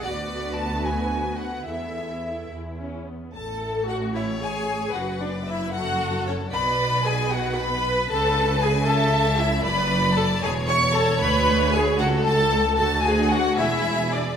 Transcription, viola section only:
X:1
M:6/8
L:1/8
Q:3/8=76
K:A
V:1 name="Viola section"
[B,B]6 | [B,A]3 E C B, | A2 F E G2 | F D E F2 C |
B2 G F B2 | A2 G A2 E | B2 A G c A | B2 G F A2 |
A G F E2 D |]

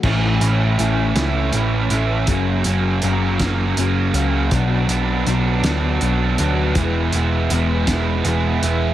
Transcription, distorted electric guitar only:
X:1
M:6/8
L:1/8
Q:3/8=54
K:A
V:1 name="Distorted electric guitar"
[A,,E,A,CE] [A,CE] [E,A,CE] [A,CE] [E,A,CE] [A,CE] | [F,,C,F,^A,C] [F,A,C] [C,F,A,C] [F,A,C] [C,F,A,C] [F,A,C] | [B,,F,B,D] [F,B,D] [B,,F,B,D] [F,B,D] [B,,F,B,D] [F,B,D] | [E,G,B,E] [G,B,E] [E,G,B,E] [G,B,E] [E,G,B,E] [G,B,E] |]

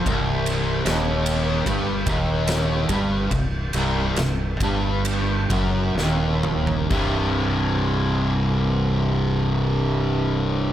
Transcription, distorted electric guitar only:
X:1
M:4/4
L:1/8
Q:1/4=67
K:Cm
V:1 name="Distorted electric guitar" clef=bass
C,,2 E,,2 G,, E,,2 G,, | C,, C,, C,, G,,2 ^F,, E,,2 | [C,,G,,C,]8 |]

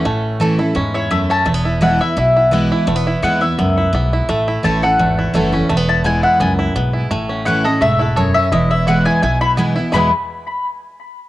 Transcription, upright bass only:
X:1
M:4/4
L:1/8
Q:"Swing" 1/4=170
K:E
V:1 name="Upright bass" clef=bass
A,,,4 E,,4 | E,,,4 B,,,4 | E,,,2 D,,2 C,,2 B,,,2 | A,,,2 A,,,2 G,,,2 F,,,2 |
E,,,4 C,,2 B,,,2 | A,,,4 E,,,4 | E,,,4 B,,,4 | E,, z6 z |]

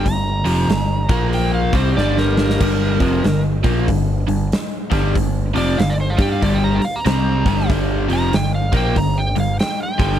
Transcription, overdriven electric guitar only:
X:1
M:4/4
L:1/8
Q:"Swing" 1/4=94
K:Gm
V:1 name="Overdriven electric guitar" clef=bass
[G,,D,] [F,,C,F,] [G,,D,] [B,,F,B,]2 [C,G,C] [G,,D,G,]2 | [G,,D,G,] [F,,C,F,] [G,,D,] [B,,F,B,] [G,,D,] [G,,D,] z [G,,D,G,] | [G,,D,] [F,,C,F,] [G,,D,] [G,DG] [G,,D,G,] z [C,G,C] [G,,D,G,] | [G,,D,G,] [F,,C,F,] [G,,D,] [B,,F,B,] [G,,D,] [G,,D,] z [G,,D,G,] |]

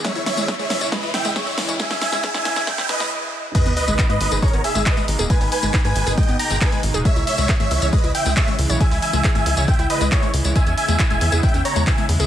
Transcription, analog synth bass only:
X:1
M:4/4
L:1/16
Q:1/4=137
K:G#m
V:1 name="Analog synth bass" clef=bass
z C,, z C,, z G,,, C,, C,, z C,, z C,, z2 C,, B,,, | z C,, z C,, z G,,, C,, C,, z C,, z C,, z4 | z G,,, z G,,, z G,, G,,, G,,, z G,,, z G,,, z2 G,,, D,,, | z G,,, z G,,, z G,, G,,, G,,, z G,,, z G,,, z2 G,,, D,,, |
z C,, z C,, z G,,, C,, C,, z C,, z C,, z2 C,, B,,, | z C,, z C,, z G,,, C,, C,, z C,, z C,, z2 C,, C,, | z E,, z E,, z E,,, E,, E,, z E,, z E,, z2 E,, C,, |]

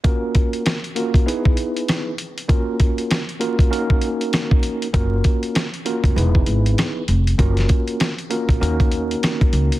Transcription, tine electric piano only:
X:1
M:4/4
L:1/8
Q:"Swing 16ths" 1/4=98
K:F#
V:1 name="Tine electric piano"
[A,CEFA]2 z [A,CEFA] [B,D=EGB]3 z | [A,CEFA]2 z [A,CEFA] [A,CDFA]4 | [A,CEFA]2 z [A,CEFA] [B,D=EGB]3 z | [A,CEFA]2 z [A,CEFA] [A,CDFA]4 |]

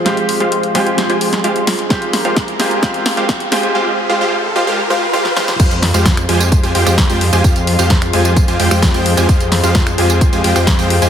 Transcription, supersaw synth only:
X:1
M:4/4
L:1/16
Q:1/4=130
K:Fm
V:1 name="Supersaw synth"
[A,FGcf] z2 [A,FGcf]2 z [A,FGca]3 [A,FGca]3 [A,FGcf] z3 | [A,FGcf] z2 [A,FGcf]2 z [A,FGca]2 [A,FGcf] z2 [A,FGcf]2 z [A,FGca]2 | [A,FGcf] z2 [A,FGcf] [A,FGcf] z2 [A,FGcf] [A,FGcf] z [A,FGcf] z [A,FGcf] z [A,FGcf] z | [A,FGcf] z2 [A,FGcf]2 z [A,FGca]3 [A,FGca] [A,FGcg] [A,FGcg]2 [A,FGcg] z [A,FGca] |
z3 [A,FGcf]2 z [A,FGca]3 [A,FGca] [A,FGcg] [A,FGcg]2 [A,FGcg] z [A,FGca] | [A,FGcf] z2 [A,FGcf]2 z [A,FGca]3 [A,FGca] [A,FGcg] [A,FGcg]2 [A,FGcg] z [A,FGca] |]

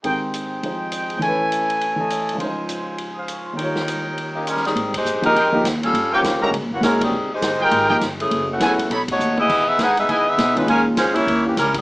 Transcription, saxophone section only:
X:1
M:4/4
L:1/8
Q:"Swing" 1/4=203
K:Ab
V:1 name="Saxophone section"
z8 | z8 | z8 | z4 z [E,B,DG] [G,DEB] [E,G,CA]- |
[E,G,CA] [A,EGc]2 [A,EGB]3 z [G,DF=A]- | [G,DF=A] [F,B,DG]3 z [_F,B,D_G] [_A,D_FB] [E,=G,C_A]- | [E,G,CA] [A,EGc]2 [A,EGB]3 z [_F,=A,D_A]- | [_F,=A,D_A] [F,=A,D_G]3 z [A,^D^F^c]2 [=B,_F^G^d]- |
[=B,_F^G^d] [B,^DG=e] [DG=B_g] [B,D^Ge] [B,=EGd] [B,DGe]2 [^G,DEB] | [A,DFB] z [A,DFc] [B,_FGd]2 [_F,B,DG] [G,DFB] [E,C] |]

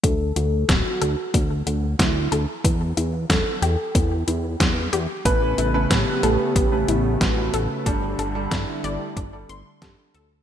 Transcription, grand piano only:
X:1
M:4/4
L:1/16
Q:1/4=92
K:D
V:1 name="Grand piano"
z16 | z16 | [A,CB]3 [A,CB]3 [A,CB] z2 [A,CB] z2 [A,CB]4 | [G,DA]3 [G,DA]3 [G,DA] z2 [G,DA] z2 [G,DA]4 |]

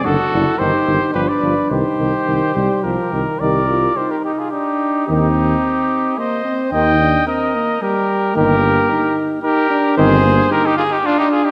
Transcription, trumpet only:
X:1
M:3/4
L:1/16
Q:1/4=110
K:Cm
V:1 name="Trumpet"
^F4 G4 G =B3 | G8 G4 | B4 G G E F E4 | E8 c4 |
e4 B4 G4 | G6 z2 G4 | [K:Eb] A4 G E F E D E F E |]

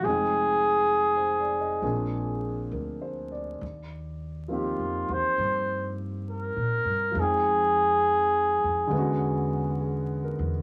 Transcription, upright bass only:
X:1
M:4/4
L:1/8
Q:"Swing" 1/4=68
K:Eb
V:1 name="Upright bass" clef=bass
F,,,4 B,,,2 D,,2 | E,,2- (3E,, F,, _F,, G,,2- (3G,, B,, G,, | F,,3 F,, =E,,3 E,, |]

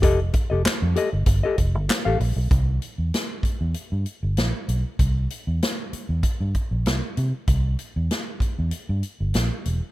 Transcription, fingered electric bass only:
X:1
M:4/4
L:1/16
Q:1/4=97
K:Cmix
V:1 name="Fingered electric bass" clef=bass
F,,,2 z F,,, z F,, z G,,, G,,, z F,,, G,,, z A,,, B,,, =B,,, | C,,2 z E,, z3 E,, z G,, z G,,, B,,, z =B,,, z | C,,2 z E,, z3 E,, z G,, z B,,, C,, z C, z | C,,2 z E,, z3 E,, z G,, z G,,, B,,, z E,,, z |]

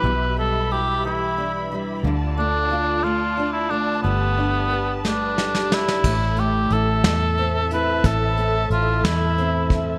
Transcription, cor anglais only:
X:1
M:6/8
L:1/16
Q:3/8=60
K:Am
V:1 name="Cor anglais"
B2 A2 G2 E4 z2 | z2 D4 F3 E D2 | B,6 D4 E2- | E2 G2 A6 B2 |
A4 F2 E4 z2 |]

